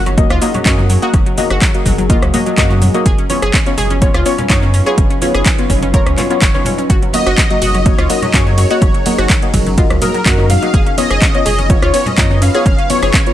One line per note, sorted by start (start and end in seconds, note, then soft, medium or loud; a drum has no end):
0.00 0.25 F#1 loud
0.00 10.70 F#3 medium
0.00 3.02 C#4 medium
0.00 3.02 D#4 medium
0.00 3.02 G#4 medium
0.00 3.02 A#4 medium
0.06 0.14 F#3 medium
0.06 closed hi-hat soft
0.06 high conga medium
0.06 high woodblock medium
0.06 shaker soft
0.18 0.27 F#3 medium
0.18 0.26 A#3 loud
0.18 0.26 F#4 medium
0.18 0.26 D#5 loud
0.18 kick loud
0.18 closed hi-hat medium
0.18 shaker soft
0.30 0.39 C#2 medium
0.30 0.38 F4 loud
0.30 cross-stick medium
0.30 closed hi-hat soft
0.30 high woodblock soft
0.30 shaker soft
0.42 0.51 F#3 medium
0.42 0.50 A#3 loud
0.42 0.50 F#4 medium
0.42 0.50 D#5 loud
0.42 open hi-hat loud
0.42 shaker medium
0.54 0.62 F#3 medium
0.54 closed hi-hat soft
0.54 low conga medium
0.54 high woodblock medium
0.54 shaker soft
0.66 0.98 F#2 medium
0.66 0.99 A#3 medium
0.66 0.75 C#4 medium
0.66 0.99 F#4 medium
0.66 0.99 D#5 loud
0.66 kick loud
0.66 clap loud
0.66 closed hi-hat medium
0.66 shaker soft
0.78 0.86 F#3 medium
0.78 high conga medium
0.78 high woodblock soft
0.78 shaker soft
0.90 0.99 F#3 medium
0.90 open hi-hat medium
0.90 shaker medium
1.02 1.14 A#3 medium
1.02 1.10 F#4 loud
1.02 1.14 F#4 medium
1.02 1.14 D#5 loud
1.02 closed hi-hat soft
1.02 shaker soft
1.13 1.23 F#1 loud
1.13 1.23 F#3 medium
1.13 kick loud
1.13 closed hi-hat medium
1.13 high woodblock medium
1.13 shaker soft
1.26 1.34 F#3 medium
1.26 closed hi-hat soft
1.26 shaker soft
1.38 1.47 F#3 medium
1.38 1.46 A#3 medium
1.38 1.46 F#4 medium
1.38 1.46 D#5 medium
1.38 open hi-hat loud
1.38 high conga medium
1.38 high woodblock soft
1.38 shaker medium
1.50 1.59 F#1 loud
1.50 1.58 F#4 medium
1.50 cross-stick medium
1.50 closed hi-hat soft
1.50 shaker soft
1.61 1.71 F#3 medium
1.61 kick loud
1.61 clap loud
1.61 closed hi-hat medium
1.61 high woodblock medium
1.61 shaker soft
1.74 1.81 A#3 medium
1.74 1.81 F#4 medium
1.74 1.81 D#5 medium
1.74 closed hi-hat soft
1.74 shaker soft
1.86 2.17 F#1 loud
1.86 1.95 F#3 medium
1.86 kick medium
1.86 open hi-hat medium
1.86 low conga medium
1.86 high woodblock soft
1.86 shaker medium
1.98 2.06 F#3 medium
1.98 closed hi-hat soft
1.98 high conga medium
1.98 shaker soft
2.10 2.18 A#3 loud
2.10 2.19 F4 loud
2.10 2.18 F#4 loud
2.10 2.18 D#5 loud
2.10 kick loud
2.10 closed hi-hat loud
2.10 shaker soft
2.22 2.31 C#2 medium
2.22 2.30 F#3 medium
2.22 cross-stick medium
2.22 closed hi-hat soft
2.22 high woodblock medium
2.22 shaker soft
2.34 2.43 F#3 medium
2.34 2.42 A#3 loud
2.34 2.42 F#4 medium
2.34 2.42 D#5 loud
2.34 open hi-hat loud
2.34 low conga medium
2.34 shaker medium
2.46 2.54 F#3 medium
2.46 closed hi-hat soft
2.46 high woodblock soft
2.46 shaker soft
2.58 2.90 F#2 medium
2.58 2.91 A#3 medium
2.58 2.91 F#4 medium
2.58 2.67 F#4 loud
2.58 2.91 D#5 loud
2.58 kick loud
2.58 clap loud
2.58 closed hi-hat medium
2.58 shaker soft
2.70 2.78 F#3 medium
2.70 high conga medium
2.70 high woodblock medium
2.70 shaker soft
2.82 2.91 F#3 medium
2.82 open hi-hat medium
2.82 low conga medium
2.82 shaker medium
2.94 3.02 F#3 medium
2.94 3.04 A#3 medium
2.94 3.04 F#4 medium
2.94 3.04 D#5 loud
2.94 closed hi-hat soft
2.94 high woodblock soft
2.94 shaker soft
3.06 3.15 F#1 loud
3.06 10.70 C#4 medium
3.06 13.33 D#4 medium
3.06 6.86 F4 medium
3.06 3.15 G#4 loud
3.06 6.86 B4 medium
3.06 kick loud
3.06 closed hi-hat loud
3.06 shaker soft
3.18 3.26 C#4 medium
3.18 closed hi-hat soft
3.18 shaker soft
3.30 3.38 B3 medium
3.30 3.39 C#4 medium
3.30 3.38 F4 medium
3.30 3.38 C#5 medium
3.30 open hi-hat loud
3.30 high conga loud
3.30 high woodblock medium
3.30 shaker medium
3.42 3.51 F#1 loud
3.42 3.50 G#4 medium
3.42 cross-stick medium
3.42 closed hi-hat soft
3.42 shaker soft
3.53 3.63 C#4 medium
3.53 kick loud
3.53 clap loud
3.53 closed hi-hat loud
3.53 high woodblock soft
3.53 shaker soft
3.66 3.74 B3 medium
3.66 3.74 C#4 medium
3.66 3.74 F4 medium
3.66 3.74 C#5 medium
3.66 closed hi-hat soft
3.66 shaker soft
3.78 4.10 F#1 loud
3.78 3.87 G#4 loud
3.78 open hi-hat medium
3.78 low conga medium
3.78 high woodblock medium
3.78 shaker medium
3.90 3.98 C#4 medium
3.90 closed hi-hat soft
3.90 high conga medium
3.90 shaker soft
4.02 4.10 B3 loud
4.02 4.11 C#4 medium
4.02 4.10 F4 medium
4.02 4.10 C#5 loud
4.02 kick loud
4.02 closed hi-hat loud
4.02 high woodblock soft
4.02 shaker soft
4.14 4.23 C#2 medium
4.14 4.22 F4 loud
4.14 cross-stick medium
4.14 closed hi-hat soft
4.14 shaker soft
4.26 4.34 B3 loud
4.26 4.35 C#4 medium
4.26 4.34 F4 medium
4.26 4.34 C#5 loud
4.26 open hi-hat loud
4.26 shaker medium
4.38 4.46 C#4 medium
4.38 closed hi-hat soft
4.38 low conga medium
4.38 high woodblock medium
4.38 shaker soft
4.50 4.82 F#2 medium
4.50 4.83 B3 medium
4.50 4.59 D#4 loud
4.50 4.83 F4 medium
4.50 4.83 C#5 loud
4.50 kick loud
4.50 clap loud
4.50 closed hi-hat medium
4.50 shaker soft
4.62 4.70 C#4 medium
4.62 high conga medium
4.62 high woodblock soft
4.62 shaker soft
4.74 4.83 C#4 medium
4.74 open hi-hat medium
4.74 shaker medium
4.86 4.98 B3 medium
4.86 4.98 F4 medium
4.86 4.94 G#4 medium
4.86 4.98 C#5 loud
4.86 closed hi-hat soft
4.86 high woodblock medium
4.86 shaker soft
4.98 5.07 F#1 loud
4.98 5.07 C#4 medium
4.98 kick loud
4.98 closed hi-hat loud
4.98 shaker soft
5.10 5.18 C#4 medium
5.10 closed hi-hat soft
5.10 high woodblock soft
5.10 shaker soft
5.22 5.30 B3 medium
5.22 5.31 C#4 medium
5.22 5.30 F4 medium
5.22 5.30 C#5 medium
5.22 open hi-hat loud
5.22 high conga loud
5.22 shaker medium
5.34 5.43 F#1 loud
5.34 5.42 G#4 medium
5.34 cross-stick medium
5.34 closed hi-hat soft
5.34 shaker soft
5.46 5.55 C#4 medium
5.46 kick loud
5.46 clap loud
5.46 closed hi-hat loud
5.46 high woodblock medium
5.46 shaker soft
5.58 5.66 B3 medium
5.58 5.66 F4 medium
5.58 5.66 C#5 medium
5.58 closed hi-hat soft
5.58 shaker soft
5.69 6.02 F#1 loud
5.69 5.79 C#4 medium
5.69 kick medium
5.69 open hi-hat medium
5.69 low conga medium
5.69 high woodblock soft
5.69 shaker medium
5.82 5.90 C#4 medium
5.82 closed hi-hat soft
5.82 high conga medium
5.82 shaker soft
5.94 6.02 B3 loud
5.94 6.02 F4 medium
5.94 6.03 A#4 loud
5.94 6.02 C#5 loud
5.94 kick loud
5.94 closed hi-hat loud
5.94 high woodblock medium
5.94 shaker soft
6.06 6.15 C#2 medium
6.06 6.14 C#4 medium
6.06 cross-stick medium
6.06 closed hi-hat soft
6.06 shaker soft
6.17 6.27 B3 medium
6.17 6.27 C#4 medium
6.17 6.27 F4 medium
6.17 6.27 C#5 medium
6.17 clap soft
6.17 open hi-hat loud
6.17 low conga medium
6.17 high woodblock soft
6.17 shaker medium
6.30 6.38 B3 loud
6.30 6.38 C#4 medium
6.30 6.38 F4 medium
6.30 6.38 C#5 loud
6.30 closed hi-hat soft
6.30 shaker soft
6.42 6.51 F#1 loud
6.42 6.51 C#5 loud
6.42 kick loud
6.42 clap loud
6.42 closed hi-hat loud
6.42 shaker soft
6.54 6.62 B3 loud
6.54 6.62 C#4 medium
6.54 6.62 F4 medium
6.54 6.62 C#5 loud
6.54 high conga loud
6.54 high woodblock medium
6.54 shaker soft
6.65 6.75 C#4 medium
6.65 open hi-hat medium
6.65 low conga medium
6.65 shaker medium
6.78 6.86 C#4 medium
6.78 closed hi-hat soft
6.78 high woodblock soft
6.78 shaker soft
6.90 6.99 F#1 loud
6.90 6.99 F#4 loud
6.90 10.70 G#4 medium
6.90 10.70 A#4 medium
6.90 kick loud
6.90 closed hi-hat loud
6.90 high woodblock soft
6.90 shaker soft
7.02 7.10 F#3 medium
7.02 closed hi-hat soft
7.02 shaker soft
7.13 7.23 F#3 medium
7.13 7.22 A#3 medium
7.13 7.22 F#4 medium
7.13 7.22 D#5 medium
7.13 7.87 D#5 loud
7.13 open hi-hat loud
7.13 ride medium
7.13 high conga medium
7.13 high woodblock medium
7.13 shaker medium
7.26 7.35 F#1 loud
7.26 7.34 F#4 medium
7.26 cross-stick medium
7.26 closed hi-hat soft
7.26 shaker soft
7.38 7.47 F#3 medium
7.38 kick loud
7.38 clap loud
7.38 closed hi-hat medium
7.38 high woodblock soft
7.38 shaker soft
7.50 7.58 F#3 medium
7.50 7.57 A#3 medium
7.50 7.58 F#4 medium
7.50 7.58 D#5 medium
7.50 closed hi-hat soft
7.50 shaker soft
7.62 7.94 F#1 loud
7.62 7.71 F#4 medium
7.62 open hi-hat medium
7.62 ride medium
7.62 low conga medium
7.62 shaker medium
7.74 7.82 F#3 medium
7.74 closed hi-hat soft
7.74 high conga medium
7.74 high woodblock medium
7.74 shaker soft
7.86 7.95 F#3 medium
7.86 7.94 A#3 loud
7.86 7.94 F#4 medium
7.86 8.11 C#5 loud
7.86 7.94 D#5 loud
7.86 kick loud
7.86 closed hi-hat loud
7.86 shaker soft
7.98 8.07 C#2 medium
7.98 8.06 F4 loud
7.98 cross-stick medium
7.98 closed hi-hat soft
7.98 high woodblock soft
7.98 shaker soft
8.10 8.19 F#3 medium
8.10 8.18 A#3 loud
8.10 8.18 F#4 medium
8.10 8.18 D#5 loud
8.10 8.35 D#5 loud
8.10 open hi-hat loud
8.10 ride medium
8.10 shaker medium
8.22 8.30 F#3 medium
8.22 closed hi-hat soft
8.22 low conga medium
8.22 high woodblock medium
8.22 shaker soft
8.34 8.66 F#2 medium
8.34 8.67 A#3 medium
8.34 8.43 C#4 loud
8.34 8.67 F#4 medium
8.34 8.57 C#5 loud
8.34 8.67 D#5 loud
8.34 kick loud
8.34 clap loud
8.34 closed hi-hat loud
8.34 shaker soft
8.46 8.54 F#3 medium
8.46 high conga loud
8.46 high woodblock soft
8.46 shaker soft
8.58 8.67 F#3 medium
8.58 9.50 C#5 loud
8.58 open hi-hat medium
8.58 ride medium
8.58 shaker medium
8.70 8.82 A#3 medium
8.70 8.82 F#4 medium
8.70 8.78 F#4 medium
8.70 8.82 D#5 loud
8.70 closed hi-hat soft
8.70 shaker soft
8.82 8.91 F#1 loud
8.82 8.91 F#3 medium
8.82 kick loud
8.82 closed hi-hat medium
8.82 high woodblock medium
8.82 shaker soft
8.94 9.02 F#3 medium
8.94 closed hi-hat soft
8.94 shaker soft
9.06 9.15 F#3 medium
9.06 9.14 A#3 medium
9.06 9.14 F#4 medium
9.06 9.14 D#5 medium
9.06 open hi-hat loud
9.06 ride medium
9.06 high conga loud
9.06 high woodblock soft
9.06 shaker medium
9.18 9.27 F#1 loud
9.18 9.26 F#4 medium
9.18 cross-stick medium
9.18 closed hi-hat soft
9.18 shaker soft
9.29 9.39 F#3 medium
9.29 kick loud
9.29 clap loud
9.29 closed hi-hat medium
9.29 high woodblock medium
9.29 shaker soft
9.42 9.50 A#3 medium
9.42 9.50 F#4 medium
9.42 9.50 D#5 medium
9.42 closed hi-hat soft
9.42 shaker soft
9.54 9.86 F#1 loud
9.54 9.63 F#3 medium
9.54 kick medium
9.54 open hi-hat loud
9.54 ride medium
9.54 low conga medium
9.54 high woodblock soft
9.54 shaker medium
9.66 9.74 F#3 medium
9.66 closed hi-hat soft
9.66 high conga medium
9.66 shaker soft
9.78 9.86 A#3 loud
9.78 9.87 F4 medium
9.78 9.86 F#4 medium
9.78 9.86 D#5 loud
9.78 kick loud
9.78 closed hi-hat loud
9.78 shaker soft
9.90 9.99 C#2 medium
9.90 9.98 F#3 medium
9.90 cross-stick medium
9.90 closed hi-hat soft
9.90 high woodblock medium
9.90 shaker soft
10.02 10.11 F#3 medium
10.02 10.10 A#3 loud
10.02 10.10 F#4 medium
10.02 10.46 A#4 loud
10.02 10.10 D#5 loud
10.02 open hi-hat loud
10.02 ride medium
10.02 low conga medium
10.02 shaker medium
10.14 10.22 F#3 medium
10.14 closed hi-hat soft
10.14 high woodblock soft
10.14 shaker soft
10.26 10.58 F#2 medium
10.26 10.59 A#3 medium
10.26 10.59 F#4 medium
10.26 10.35 F#4 loud
10.26 10.59 D#5 loud
10.26 kick loud
10.26 clap loud
10.26 closed hi-hat loud
10.26 shaker soft
10.38 10.46 F#3 medium
10.38 high conga loud
10.38 high woodblock medium
10.38 shaker soft
10.50 10.59 F#3 medium
10.50 10.94 F5 loud
10.50 open hi-hat medium
10.50 ride medium
10.50 low conga medium
10.50 shaker medium
10.62 10.70 F#3 medium
10.62 10.72 A#3 medium
10.62 10.72 F#4 medium
10.62 10.72 D#5 loud
10.62 closed hi-hat soft
10.62 high woodblock soft
10.62 shaker soft
10.74 10.83 F#1 loud
10.74 13.33 F#3 medium
10.74 13.33 C#4 medium
10.74 13.33 F4 medium
10.74 10.83 G#4 loud
10.74 13.33 B4 loud
10.74 kick loud
10.74 closed hi-hat medium
10.74 shaker soft
10.86 10.94 C#4 medium
10.86 closed hi-hat soft
10.86 shaker soft
10.98 11.06 B3 medium
10.98 11.07 C#4 medium
10.98 11.06 F4 medium
10.98 11.06 C#5 loud
10.98 11.71 D#5 loud
10.98 open hi-hat loud
10.98 ride medium
10.98 high conga medium
10.98 high woodblock medium
10.98 shaker medium
11.10 11.19 F#1 loud
11.10 11.18 G#4 medium
11.10 cross-stick medium
11.10 closed hi-hat soft
11.10 shaker soft
11.22 11.31 C#4 medium
11.22 kick loud
11.22 clap loud
11.22 closed hi-hat medium
11.22 high woodblock soft
11.22 shaker soft
11.34 11.42 B3 medium
11.34 11.42 C#4 medium
11.34 11.42 F4 medium
11.34 11.42 C#5 medium
11.34 closed hi-hat soft
11.34 shaker soft
11.46 11.78 F#1 loud
11.46 11.55 G#4 medium
11.46 open hi-hat loud
11.46 ride medium
11.46 low conga medium
11.46 high woodblock medium
11.46 shaker medium
11.58 11.66 C#4 medium
11.58 closed hi-hat soft
11.58 high conga medium
11.58 shaker soft
11.70 11.78 B3 loud
11.70 11.79 C#4 medium
11.70 11.78 F4 medium
11.70 11.78 C#5 loud
11.70 12.08 C#5 loud
11.70 kick loud
11.70 closed hi-hat medium
11.70 high woodblock soft
11.70 shaker soft
11.82 11.91 C#2 medium
11.82 11.90 F4 loud
11.82 cross-stick medium
11.82 closed hi-hat soft
11.82 shaker soft
11.94 12.02 B3 loud
11.94 12.03 C#4 medium
11.94 12.02 F4 medium
11.94 12.02 C#5 loud
11.94 open hi-hat loud
11.94 ride medium
11.94 shaker medium
12.06 12.14 C#4 medium
12.06 12.44 D#5 loud
12.06 closed hi-hat soft
12.06 low conga medium
12.06 high woodblock medium
12.06 shaker soft
12.18 12.50 F#2 medium
12.18 12.51 B3 medium
12.18 12.27 D#4 loud
12.18 12.51 F4 medium
12.18 12.51 C#5 loud
12.18 kick loud
12.18 clap loud
12.18 closed hi-hat medium
12.18 shaker soft
12.30 12.38 C#4 medium
12.30 high conga medium
12.30 high woodblock soft
12.30 shaker soft
12.42 12.51 C#4 medium
12.42 12.65 F5 loud
12.42 open hi-hat loud
12.42 ride medium
12.42 shaker medium
12.54 12.66 B3 medium
12.54 12.66 F4 medium
12.54 12.62 G#4 loud
12.54 12.66 C#5 loud
12.54 closed hi-hat soft
12.54 high woodblock medium
12.54 shaker soft
12.66 12.75 F#1 loud
12.66 12.75 C#4 medium
12.66 12.91 F5 loud
12.66 kick loud
12.66 closed hi-hat medium
12.66 shaker soft
12.78 12.86 C#4 medium
12.78 closed hi-hat soft
12.78 high woodblock soft
12.78 shaker soft
12.90 12.98 B3 medium
12.90 12.99 C#4 medium
12.90 12.98 F4 medium
12.90 12.98 C#5 medium
12.90 13.33 C#5 loud
12.90 open hi-hat loud
12.90 ride medium
12.90 high conga medium
12.90 shaker medium
13.02 13.11 F#1 loud
13.02 13.10 G#4 medium
13.02 cross-stick medium
13.02 closed hi-hat soft
13.02 shaker soft
13.14 13.23 C#4 medium
13.14 kick loud
13.14 clap loud
13.14 closed hi-hat medium
13.14 high woodblock medium
13.14 shaker soft
13.26 13.33 B3 medium
13.26 13.33 F4 medium
13.26 13.33 C#5 medium
13.26 closed hi-hat soft
13.26 shaker soft